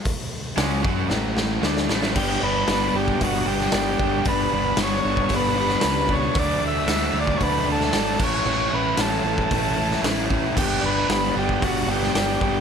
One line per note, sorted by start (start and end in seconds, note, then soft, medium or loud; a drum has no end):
0.05 kick loud
0.05 open hi-hat medium
0.56 0.82 C#2 loud
0.56 0.82 C#3 medium
0.56 0.82 G#3 loud
0.56 0.81 C#4 loud
0.56 snare loud
0.56 open hi-hat medium
0.82 1.08 F#2 loud
0.82 1.09 F#3 medium
0.82 1.09 C#4 loud
0.82 1.09 F#4 loud
0.82 kick loud
1.09 1.59 A1 loud
1.09 1.61 A2 medium
1.09 1.62 E3 medium
1.09 1.61 A3 loud
1.09 snare medium
1.37 snare medium
1.62 1.86 D2 loud
1.62 1.87 D3 medium
1.62 1.87 A3 loud
1.62 1.88 D4 loud
1.62 snare medium
1.77 snare medium
1.88 2.14 A1 loud
1.88 2.13 A2 medium
1.88 2.14 E3 medium
1.88 2.14 A3 loud
1.88 snare loud
2.03 snare medium
2.13 2.38 G1 loud
2.13 2.67 G2 loud
2.13 2.67 D3 loud
2.13 2.44 G3 medium
2.13 2.43 B3 medium
2.13 2.41 D4 loud
2.13 2.42 G4 medium
2.13 kick loud
2.13 crash loud
2.42 2.64 G1 medium
2.42 2.69 G3 medium
2.42 2.70 B3 medium
2.42 2.70 D4 medium
2.42 2.69 B4 medium
2.68 2.90 G1 loud
2.68 3.48 G2 medium
2.68 3.19 D3 medium
2.68 2.97 G3 loud
2.68 2.95 B3 loud
2.68 2.93 D4 loud
2.68 2.96 B4 medium
2.68 snare loud
2.68 open hi-hat medium
2.93 3.16 G1 medium
2.93 3.20 G3 medium
2.93 3.20 B3 medium
2.93 3.22 D4 medium
2.93 3.22 G4 medium
3.08 kick medium
3.20 3.43 G1 loud
3.20 3.47 D3 medium
3.20 3.46 G3 medium
3.20 3.46 B3 medium
3.20 3.46 D4 medium
3.20 3.46 F#4 medium
3.20 kick loud
3.20 open hi-hat medium
3.46 3.68 G1 loud
3.46 4.00 G2 medium
3.46 3.71 D3 medium
3.46 3.72 G3 medium
3.46 3.73 B3 medium
3.46 3.75 D4 loud
3.46 3.73 G4 medium
3.61 snare soft
3.72 3.95 G1 medium
3.72 4.24 D3 medium
3.72 4.02 G3 medium
3.72 4.00 B3 medium
3.72 3.99 D4 medium
3.72 3.98 G4 loud
3.72 snare loud
3.72 open hi-hat medium
3.99 4.22 G1 medium
3.99 4.24 G3 medium
3.99 4.25 B3 medium
3.99 4.27 D4 medium
3.99 4.26 G4 medium
3.99 kick loud
4.24 4.47 G1 loud
4.24 4.77 G2 loud
4.24 4.77 D3 loud
4.24 4.54 G3 loud
4.24 4.53 B3 loud
4.24 4.51 D4 loud
4.24 kick loud
4.24 open hi-hat medium
4.29 4.53 B4 loud
4.52 4.74 G1 medium
4.52 4.78 G3 medium
4.52 4.79 B3 medium
4.52 4.81 D4 medium
4.52 4.80 B4 loud
4.77 4.99 G1 loud
4.77 5.30 G2 loud
4.77 5.28 D3 loud
4.77 5.06 G3 medium
4.77 5.04 B3 loud
4.77 snare loud
4.77 open hi-hat medium
4.81 5.03 D4 loud
4.81 5.35 C#5 loud
5.04 5.26 G1 medium
5.04 5.30 G3 medium
5.04 5.30 B3 medium
5.04 5.32 D4 medium
5.17 kick medium
5.29 5.75 G1 loud
5.29 5.56 D3 medium
5.29 5.55 G3 medium
5.29 5.55 B3 medium
5.29 5.54 D4 medium
5.29 kick loud
5.29 open hi-hat medium
5.36 6.14 B4 loud
5.55 6.10 G2 medium
5.55 5.80 D3 medium
5.55 5.81 G3 medium
5.55 5.82 B3 medium
5.55 5.83 D4 medium
5.69 snare soft
5.81 6.28 C#2 loud
5.81 6.33 D3 medium
5.81 6.10 G3 medium
5.81 6.09 B3 medium
5.81 6.07 D4 medium
5.81 snare loud
5.81 open hi-hat medium
6.09 6.35 G3 medium
6.09 6.34 B3 medium
6.09 6.34 D4 medium
6.09 kick medium
6.13 6.38 C#5 loud
6.34 6.57 D2 loud
6.34 6.85 D3 medium
6.34 6.62 F#3 medium
6.34 6.62 A3 medium
6.34 6.59 D4 loud
6.34 kick loud
6.34 open hi-hat medium
6.39 6.64 D5 loud
6.60 6.83 D2 medium
6.60 6.86 F#3 medium
6.60 6.88 A3 medium
6.60 6.88 D4 medium
6.68 7.19 E5 loud
6.86 7.09 D2 medium
6.86 7.37 D3 loud
6.86 7.15 F#3 loud
6.86 7.14 A3 loud
6.86 7.11 D4 loud
6.86 snare loud
6.86 open hi-hat medium
7.12 7.36 D2 medium
7.12 7.38 F#3 medium
7.12 7.40 A3 medium
7.12 7.40 D4 medium
7.20 7.38 D5 loud
7.27 kick medium
7.37 7.66 D3 medium
7.37 7.65 F#3 medium
7.37 7.64 A3 medium
7.37 7.42 C#5 medium
7.37 kick loud
7.37 open hi-hat medium
7.41 7.63 D2 loud
7.41 7.63 D4 medium
7.41 7.69 B4 loud
7.64 7.89 D2 loud
7.64 7.90 D3 medium
7.64 7.91 F#3 medium
7.64 7.92 A3 medium
7.64 7.93 D4 medium
7.72 8.24 A4 loud
7.81 snare soft
7.91 8.16 G#1 loud
7.91 8.17 D3 medium
7.91 8.17 F#3 medium
7.91 8.18 A3 medium
7.91 8.19 D4 medium
7.91 snare loud
7.91 open hi-hat medium
8.19 8.42 A1 medium
8.19 8.44 A2 medium
8.19 8.45 E3 medium
8.19 8.45 A3 medium
8.19 8.45 C#4 medium
8.19 8.47 E4 medium
8.19 kick loud
8.19 crash loud
8.24 8.76 C#5 loud
8.45 8.68 A1 loud
8.45 8.96 A2 medium
8.45 8.97 E3 medium
8.45 8.72 A3 loud
8.45 8.72 C#4 medium
8.45 8.69 E4 loud
8.70 8.94 A1 medium
8.70 8.98 A3 medium
8.70 8.98 C#4 medium
8.70 8.99 E4 medium
8.70 9.00 B4 loud
8.97 9.20 A1 medium
8.97 9.51 A2 loud
8.97 9.49 E3 medium
8.97 9.26 A3 loud
8.97 9.24 C#4 loud
8.97 9.23 E4 loud
8.97 10.01 A4 medium
8.97 snare loud
8.97 open hi-hat medium
9.24 9.46 A1 medium
9.24 9.50 A3 medium
9.24 9.51 C#4 medium
9.24 9.51 E4 medium
9.38 kick medium
9.50 9.96 A1 medium
9.50 9.77 E3 medium
9.50 9.76 A3 medium
9.50 9.75 C#4 medium
9.50 9.75 E4 medium
9.50 kick loud
9.50 open hi-hat medium
9.76 10.31 A2 medium
9.76 10.02 E3 medium
9.76 10.02 A3 medium
9.76 10.03 C#4 medium
9.76 10.05 E4 medium
9.91 snare soft
10.03 10.47 A1 loud
10.03 10.54 E3 medium
10.03 10.31 A3 medium
10.03 10.29 C#4 medium
10.03 10.29 E4 medium
10.03 snare loud
10.03 open hi-hat medium
10.30 10.55 A3 medium
10.30 10.55 C#4 medium
10.30 10.55 E4 medium
10.30 kick medium
10.54 10.79 G1 loud
10.54 11.07 G2 medium
10.54 11.07 D3 loud
10.54 10.84 G3 medium
10.54 10.82 B3 loud
10.54 10.81 D4 loud
10.54 kick loud
10.54 crash loud
10.58 10.85 G4 medium
10.81 11.05 G1 medium
10.81 11.09 G3 medium
10.81 11.09 B3 medium
10.81 11.10 D4 medium
10.86 11.09 B4 medium
11.07 11.31 G1 loud
11.07 11.89 G2 medium
11.07 11.60 D3 loud
11.07 11.36 G3 loud
11.07 11.35 B3 loud
11.07 11.34 D4 loud
11.07 snare loud
11.07 open hi-hat medium
11.12 11.35 B4 loud
11.34 11.58 G1 medium
11.34 11.60 G3 medium
11.34 11.62 B3 medium
11.34 11.64 D4 medium
11.38 11.64 G4 medium
11.49 kick medium
11.61 11.84 G1 loud
11.61 11.88 D3 medium
11.61 11.87 G3 medium
11.61 11.87 B3 medium
11.61 11.86 D4 medium
11.61 11.89 F#4 medium
11.61 kick loud
11.61 open hi-hat medium
11.87 12.10 G1 loud
11.87 12.41 G2 medium
11.87 12.12 D3 medium
11.87 12.14 G3 medium
11.87 12.15 B3 medium
11.87 12.17 D4 medium
11.91 12.13 G4 medium
12.03 snare soft
12.14 12.36 G1 loud
12.14 12.60 D3 medium
12.14 12.41 G3 medium
12.14 12.40 B3 medium
12.14 12.39 D4 medium
12.14 12.40 G4 loud
12.14 snare loud
12.14 open hi-hat medium
12.39 12.60 G1 medium
12.39 12.60 G3 medium
12.39 12.60 B3 medium
12.39 12.60 D4 medium
12.39 12.60 G4 loud
12.39 kick medium